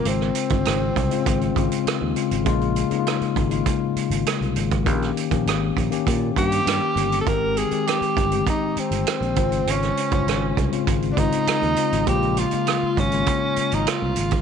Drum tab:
HH |x-xxx-xxxxxxx-xx|xxxxxxxxx-xxxxxx|xxxxx-xxx-xxx-xx|x-xxxxxxx-xxxxxx|
SD |-r--r-------r---|----r-------r---|-r--r-------r---|----r-------r---|
BD |---o--o-o-o-----|o-----o-o------o|o--o--o-o-o-----|o-----o-o-----o-|

HH |xxxxx-xxxxxxxxxx|xxxxx-xxx-xxx-xx|
SD |-r--r-------r---|----r-------r---|
BD |---o--o-o-o-----|o-----o-o------o|